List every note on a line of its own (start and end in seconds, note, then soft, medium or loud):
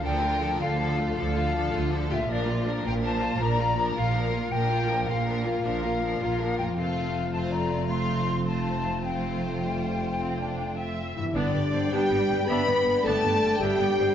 0.00 0.54 D2 medium
0.00 1.51 D3 soft
0.00 0.53 D3 medium
0.00 1.55 F3 soft
0.00 2.11 F3 medium
0.00 2.11 F4 medium
0.00 0.21 A4 medium
0.00 0.59 A#4 medium
0.00 0.59 G5 medium
0.04 0.21 F3 medium
0.04 0.22 D4 medium
0.22 0.41 A3 medium
0.22 0.41 F4 soft
0.22 0.42 F4 medium
0.42 0.61 F3 soft
0.42 0.61 D4 soft
0.42 0.60 A4 soft
0.59 1.10 D2 medium
0.59 1.09 D3 medium
0.59 0.79 A3 medium
0.59 0.79 F4 medium
0.59 1.17 A4 medium
0.59 1.14 F5 medium
0.80 0.97 F3 medium
0.80 0.98 D4 medium
0.80 0.97 A4 medium
0.98 1.17 A3 medium
0.98 1.17 F4 soft
0.98 1.17 F4 medium
1.15 1.67 D2 medium
1.15 1.66 D3 medium
1.15 1.36 F3 medium
1.15 1.36 D4 medium
1.15 1.36 A4 soft
1.15 2.09 A4 medium
1.15 1.87 F5 medium
1.35 1.54 A3 medium
1.35 1.54 F4 medium
1.35 1.55 F4 soft
1.53 1.71 F3 medium
1.53 1.71 D4 medium
1.53 1.73 A4 medium
1.72 2.23 D2 medium
1.72 2.22 D3 medium
1.72 1.91 A3 medium
1.72 1.91 F4 medium
1.72 1.93 F4 medium
1.90 2.10 F3 medium
1.90 2.10 D4 medium
1.90 2.11 A4 soft
2.08 6.01 A#2 medium
2.08 2.28 A3 soft
2.08 2.28 F4 medium
2.08 2.18 G4 medium
2.08 2.28 E5 medium
2.12 6.06 A#3 soft
2.12 2.30 F4 medium
2.20 6.10 F4 soft
2.25 2.78 A#2 medium
2.25 2.46 F3 medium
2.25 6.73 A#3 medium
2.25 2.46 D4 medium
2.25 6.73 F4 medium
2.25 6.15 F5 soft
2.29 2.78 A#1 medium
2.29 2.84 F4 medium
2.29 2.48 A#4 medium
2.29 2.85 D5 medium
2.46 2.65 A#3 medium
2.46 2.65 F4 medium
2.46 2.67 F4 medium
2.65 2.84 F3 medium
2.65 2.84 D4 medium
2.65 2.86 A#4 medium
2.83 3.34 A#1 medium
2.83 3.34 A#2 medium
2.83 3.02 A#3 medium
2.83 3.03 F4 medium
2.83 3.04 F4 medium
2.83 2.93 A#4 medium
2.83 2.91 G5 medium
3.01 3.20 F3 medium
3.01 3.20 D4 medium
3.01 3.20 A#4 medium
3.01 3.40 C5 medium
3.01 3.40 A5 medium
3.20 3.40 A#3 medium
3.20 3.40 F4 medium
3.20 3.41 F4 soft
3.39 3.90 A#1 medium
3.39 3.89 A#2 medium
3.39 3.59 F3 medium
3.39 3.58 D4 medium
3.39 3.58 A#4 medium
3.39 3.97 D5 medium
3.39 3.95 A#5 loud
3.58 3.78 A#3 medium
3.58 3.77 F4 medium
3.58 3.78 F4 soft
3.77 3.95 F3 medium
3.77 3.95 D4 medium
3.77 3.96 A#4 medium
3.95 4.46 A#1 medium
3.95 4.45 A#2 medium
3.95 4.15 A#3 medium
3.95 4.15 F4 medium
3.95 4.16 F4 medium
3.95 4.51 A#4 medium
3.95 4.51 F5 medium
4.14 4.33 F3 medium
4.14 4.33 D4 medium
4.14 4.35 A#4 medium
4.32 4.52 A#3 soft
4.32 4.52 F4 soft
4.32 4.53 F4 soft
4.51 5.02 A#1 medium
4.51 5.02 A#2 medium
4.51 4.69 F3 medium
4.51 4.69 D4 medium
4.51 5.06 A#4 medium
4.51 4.71 A#4 medium
4.51 5.08 G5 loud
4.70 4.89 A#3 medium
4.70 4.89 F4 medium
4.89 5.08 F3 medium
4.89 5.08 D4 soft
4.89 5.08 A#4 soft
5.07 5.58 A#1 medium
5.07 5.58 A#2 medium
5.07 5.27 A#3 soft
5.07 5.27 F4 soft
5.07 5.28 F4 soft
5.07 5.63 A#4 medium
5.07 5.63 F5 medium
5.27 5.44 F3 soft
5.27 5.44 D4 medium
5.27 5.45 A#4 soft
5.46 5.64 A#3 medium
5.46 5.64 F4 medium
5.46 5.65 F4 soft
5.64 6.14 A#1 medium
5.64 6.14 A#2 medium
5.64 5.83 F3 medium
5.64 5.83 D4 medium
5.64 6.57 A#4 medium
5.64 5.84 A#4 soft
5.64 6.56 F5 medium
5.83 6.02 A#3 medium
5.83 6.02 F4 soft
5.83 6.03 F4 soft
6.03 6.20 F3 medium
6.03 6.20 D4 medium
6.03 6.20 A#4 soft
6.20 6.70 A#1 medium
6.20 6.70 A#2 medium
6.20 6.40 A#3 soft
6.20 6.40 F4 soft
6.40 6.59 F3 soft
6.40 6.59 D4 medium
6.40 6.59 A#4 soft
6.58 10.49 F2 soft
6.58 6.77 A#3 soft
6.58 6.77 F4 soft
6.58 6.78 F4 soft
6.58 6.67 A#4 medium
6.58 6.64 G5 medium
6.63 10.53 A3 soft
6.68 10.58 F4 soft
6.72 11.12 F2 medium
6.72 10.62 F5 soft
6.72 7.31 F5 medium
6.77 11.13 F1 medium
6.77 10.99 A3 medium
6.77 7.30 A3 soft
6.77 7.30 C4 medium
6.77 10.99 F4 medium
6.77 7.31 F4 medium
6.77 7.32 A4 soft
7.33 7.87 A3 medium
7.33 7.87 C4 medium
7.33 7.89 F4 soft
7.33 7.52 C5 medium
7.33 7.39 A5 medium
7.52 7.89 D5 medium
7.52 7.88 A#5 medium
7.89 8.43 A3 medium
7.89 8.44 C4 medium
7.89 8.45 F4 soft
7.89 8.45 F5 medium
7.89 8.46 C6 medium
8.45 9.02 A3 soft
8.45 9.02 C4 soft
8.45 9.03 F4 soft
8.45 9.03 C5 medium
8.45 9.03 A5 medium
9.03 9.56 A3 soft
9.03 9.57 C4 soft
9.03 11.13 F4 soft
9.03 11.13 C5 medium
9.03 10.84 G5 medium
9.62 10.16 G3 soft
10.20 10.39 C4 medium
10.39 10.77 D4 soft
10.79 11.35 E5 soft
11.16 14.15 G2 medium
11.16 11.34 E3 soft
11.16 11.34 E4 medium
11.16 11.34 E5 medium
11.16 11.25 E5 soft
11.21 14.15 B3 soft
11.26 14.15 G4 soft
11.30 11.91 D3 medium
11.30 14.15 D5 soft
11.30 11.92 D5 medium
11.35 11.43 G1 medium
11.35 11.89 G3 medium
11.35 11.52 B3 medium
11.35 11.53 D4 medium
11.35 11.93 D4 medium
11.35 11.89 D4 medium
11.35 11.53 B4 medium
11.35 14.15 D5 medium
11.35 11.92 D5 medium
11.35 14.15 G5 medium
11.54 11.62 G1 soft
11.54 11.61 B3 soft
11.54 11.75 D5 medium
11.73 11.81 G1 soft
11.73 11.81 G3 medium
11.73 11.81 B3 soft
11.73 11.95 C5 medium
11.91 11.99 G1 medium
11.91 12.47 G3 medium
11.91 12.48 G3 medium
11.91 12.10 B3 medium
11.91 12.10 D4 medium
11.91 12.48 D4 medium
11.91 12.48 G4 medium
11.91 12.52 B4 medium
11.91 12.48 G5 medium
11.91 12.50 G5 medium
12.11 12.18 G1 medium
12.11 12.19 B3 medium
12.29 12.38 G1 medium
12.29 12.37 G3 medium
12.29 12.37 B3 medium
12.47 12.57 G1 medium
12.47 13.60 G3 medium
12.47 13.04 B3 medium
12.47 12.66 B3 medium
12.47 12.66 D4 medium
12.47 13.60 D4 medium
12.47 13.05 B4 medium
12.47 12.70 E5 medium
12.47 13.04 B5 medium
12.47 13.07 B5 medium
12.47 13.04 B5 medium
12.68 12.75 G1 soft
12.68 12.76 B3 medium
12.68 12.88 D5 medium
12.86 12.94 G1 medium
12.86 12.95 G3 medium
12.86 12.95 B3 medium
12.86 13.06 B4 medium
13.04 13.13 G1 medium
13.04 13.61 A3 medium
13.04 13.23 B3 medium
13.04 13.23 D4 medium
13.04 13.60 A4 medium
13.04 13.63 D5 medium
13.04 13.60 A5 loud
13.04 13.60 A5 medium
13.04 13.61 A5 medium
13.24 13.31 G1 medium
13.24 13.32 B3 medium
13.42 13.50 G1 medium
13.42 13.51 G3 medium
13.42 13.52 B3 medium
13.60 13.69 G1 medium
13.60 14.15 G3 medium
13.60 13.79 B3 medium
13.60 14.15 D4 medium
13.60 13.80 D4 medium
13.60 14.15 G4 loud
13.60 13.82 E5 medium
13.60 14.15 G5 medium
13.79 13.87 G1 medium
13.79 13.89 B3 medium
13.79 14.01 D5 medium
13.98 14.06 G1 medium
13.98 14.07 G3 medium
13.98 14.07 B3 medium
13.98 14.15 C5 medium